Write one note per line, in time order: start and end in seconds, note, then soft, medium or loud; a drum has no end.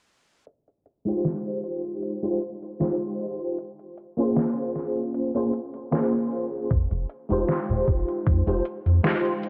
0.47 closed hi-hat medium
0.68 closed hi-hat soft
0.86 closed hi-hat medium
1.05 2.18 G#3 medium
1.05 2.18 D#4 medium
1.05 2.19 F4 medium
1.05 2.19 G4 medium
1.05 2.20 C5 loud
1.05 closed hi-hat soft
1.25 snare loud
1.25 closed hi-hat medium
1.46 closed hi-hat soft
1.64 closed hi-hat medium
1.85 closed hi-hat soft
2.03 closed hi-hat medium
2.23 2.38 G#3 medium
2.23 2.39 D#4 medium
2.23 2.39 F4 medium
2.23 2.39 G4 medium
2.23 2.39 C5 medium
2.23 closed hi-hat soft
2.42 closed hi-hat medium
2.62 closed hi-hat soft
2.80 3.56 G#3 medium
2.80 3.56 D#4 medium
2.80 3.57 F4 medium
2.80 3.57 G4 medium
2.80 3.57 C5 loud
2.80 snare loud
2.80 closed hi-hat medium
3.01 closed hi-hat soft
3.20 closed hi-hat soft
3.58 closed hi-hat medium
3.79 closed hi-hat soft
3.98 closed hi-hat medium
4.17 5.30 A#3 medium
4.17 5.30 C#4 medium
4.17 5.30 F4 medium
4.17 5.31 G#4 medium
4.17 5.31 C5 loud
4.17 closed hi-hat soft
4.36 snare loud
4.36 closed hi-hat medium
4.57 closed hi-hat soft
4.75 snare soft
4.75 closed hi-hat medium
4.96 closed hi-hat soft
5.14 closed hi-hat medium
5.34 5.50 A#3 medium
5.34 5.50 C#4 medium
5.34 5.50 F4 medium
5.34 5.51 G#4 medium
5.34 5.51 C5 medium
5.34 closed hi-hat soft
5.53 closed hi-hat medium
5.74 closed hi-hat soft
5.91 6.68 A#3 medium
5.91 6.68 C#4 medium
5.91 6.68 F4 medium
5.91 6.68 G#4 medium
5.91 6.69 C5 medium
5.91 snare loud
5.91 closed hi-hat loud
6.13 closed hi-hat soft
6.31 closed hi-hat soft
6.70 6.87 F1 medium
6.70 kick loud
6.70 closed hi-hat medium
6.91 7.05 F1 medium
6.91 closed hi-hat soft
7.09 closed hi-hat medium
7.29 7.44 F1 medium
7.29 8.41 G#3 medium
7.29 8.42 D#4 medium
7.29 8.42 F4 medium
7.29 8.42 G4 medium
7.29 8.43 C5 loud
7.29 closed hi-hat soft
7.48 snare loud
7.48 closed hi-hat medium
7.69 7.83 D#1 loud
7.69 closed hi-hat soft
7.87 8.04 F1 medium
7.87 kick medium
7.87 closed hi-hat medium
8.08 closed hi-hat soft
8.27 8.43 F2 medium
8.27 kick loud
8.27 closed hi-hat medium
8.47 8.61 F1 medium
8.47 8.62 G#3 medium
8.47 8.62 D#4 medium
8.47 8.62 F4 medium
8.47 8.63 G4 medium
8.47 8.63 C5 loud
8.47 closed hi-hat soft
8.65 closed hi-hat medium
8.86 9.00 F2 medium
8.86 closed hi-hat soft
9.04 9.49 G#3 medium
9.04 9.49 D#4 medium
9.04 9.49 F4 medium
9.04 9.49 G4 medium
9.04 9.49 C5 loud
9.04 snare loud
9.04 closed hi-hat medium
9.25 closed hi-hat soft
9.44 closed hi-hat soft